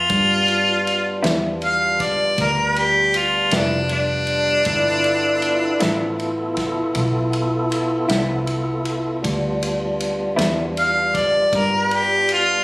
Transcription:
Already playing: F4
0.09 G2 G3 B3 D4 F4, kick, ride
0.48 ride
0.87 ride
1.22 E2 G2 F3 B3 E4, snare, ride
1.62 F5, ride
2.00 D5, kick, snare, ride
2.38 D2 A#4, kick, snare, ride
2.76 G4, ride
3.14 F4, ride
3.51 F1 G2 F3 B3 E4, snare, ride
3.55 D4
3.89 D4, ride
4.27 ride
4.65 G1 B3 E4 F4 A4, kick, ride
5.04 ride
5.42 ride
5.80 A1 G2 F3 B3 E4, snare, ride
6.19 ride
6.57 kick, snare, ride
6.95 B1, kick, ride
7.33 ride
7.72 ride
8.09 C2 G2 F3 B3 E4, snare, ride
8.47 ride
8.85 ride
9.22 D2 G3 B3 D4 F4, kick, ride
9.62 ride
10.00 ride
10.36 E2 G2 F3 B3 E4, snare, ride
10.77 F5, ride
11.15 D5, kick, snare, ride
11.52 G2 A#4, kick, ride
11.91 G4, ride
12.29 ride
12.33 F4

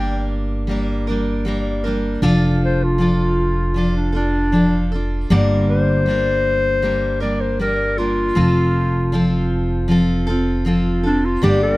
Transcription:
Already playing: G1 G3 A#3 D4 A#4 G5
0.67 G3 A#3 D4
0.71 A#4
1.07 G3 A#3 D4 A#4
1.45 G3 A#3 D4 A#4
1.84 G3 A#3 D4 A#4
2.22 F1 F3 D4 F4 A4
2.64 C5
2.83 F4
2.98 F3 D4 F4 A4
3.74 F3 D4 F4 A4
3.97 D4
4.12 D4 F4 A4
4.16 D4
4.52 F3 D4 F4 A4
4.92 D4 F4 A4
5.30 G1 G2 D3 G3 A#3 D4 A#4
5.70 C5
6.06 G3 A#3 D4
6.10 A#4
6.82 G3 A#3 D4 A#4
7.20 G3 A#3 D4 A#4 D5
7.41 C5
7.59 G3 A#3 D4 A#4
7.98 G3 A#3 D4 F4 A#4
8.35 F1 F3 C4 F4 A4
9.12 F3 C4 F4 A4
9.88 F3 C4 F4 A4
10.27 C4 F4 A4
10.65 F3 C4 F4 A4
11.03 C4 D4 F4 A4
11.25 F4
11.42 G1 G2 D3 G3 A#3 D4 G4
11.63 A#4

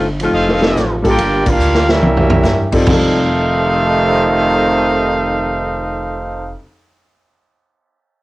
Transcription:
Already playing: G1
0.20 A2 C3 F3 A3 C4 D#4 F4, ride
0.33 F1 A4 C5 D#5 F5
0.49 snare
0.59 G3 C4 D#4 F4 A4, snare
0.75 A1, snare, hi-hat pedal
1.02 G3 A#3 D4 F4 G4 A4, kick, crash
1.09 F4 A#4 D5 G5
1.18 G1, kick, ride
1.46 A#3 D4 F4 G4 A#4 F5, kick, crash
1.59 D2, hi-hat pedal
1.75 snare
1.88 G3 A#3 C#4 E4 G4 A#4 E5, snare
2.02 C2, high tom
2.17 floor tom
2.30 floor tom
2.43 G2, snare, hi-hat pedal
2.72 G3 C4 D#4 F4 A4, kick, crash
2.81 F2 F3
2.86 F1 F2 C3 D#3 A3 D#4 G4 A4 C5 F5, kick, floor tom, crash
2.93 A4

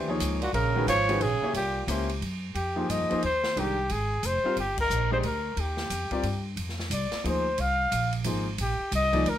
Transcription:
Already playing: D#2
0.08 F3 A#3 D#4 G#4 C#5
0.20 C#2, hi-hat pedal, ride
0.41 A#2 F#4, ride
0.53 A#1 C#3 A#4, ride
0.75 D#3 G#3 C#4 F#4 B4
0.87 G#1 F3 C#5, hi-hat pedal, ride
1.08 D#3 G#3 C#4 F#4 B4, ride
1.21 A#1 C#3 G#4, ride
1.41 A#3 C#4 E4 G4 C#5, muted upright bass stroke
1.53 C2 A#2 G4, ride
1.87 C#2 A#3 C#4 E4 G4 C5, hi-hat pedal, ride
2.09 ride
2.21 F#2, ride
2.55 F2 G4, ride
2.76 F3 A#3 D#4 G#4 C5
2.89 G2 D#5, hi-hat pedal, ride
3.00 F2
3.10 D#2 F3 A#3 D#4 G#4 C5, ride
3.23 D#2 C5, ride
3.44 snare
3.56 C2 D#3 G#3 D4 G4 A#4, ride
3.90 G#1 G#4, ride
4.23 F1 C5, hi-hat pedal, ride
4.44 G3 C4 F4 A#4 F5, muted upright bass stroke
4.56 G1 G4, ride
4.77 A#4, kick, crash
4.90 A#1, hi-hat pedal
5.11 G#3 D4 G4 C5 D#5
5.23 D2 A#4, ride
5.57 D#2 G4, ride
5.77 snare
5.90 F2, hi-hat pedal, ride
6.10 G3 C4 F4 A#4 D5, muted upright bass stroke, kick, ride
6.23 G2, ride
6.56 F2, ride
6.69 snare
6.80 snare
6.90 C2 D5, hi-hat pedal, ride
7.12 muted upright bass stroke, snare, ride
7.24 D2 F3 A#3 D#4 G#4 C5, ride
7.29 C5
7.58 C2 F5, ride
7.91 A#1, hi-hat pedal, ride
8.13 ride
8.24 G#1 F3 A#3 D#4 G#4 C5, hi-hat pedal, ride
8.58 A#1 G4, ride
8.79 muted upright bass stroke
8.92 C2 D#5, hi-hat pedal, ride
9.13 F3 A#3 D#4 G#4 D5, kick, ride
9.26 D2 A#4, ride

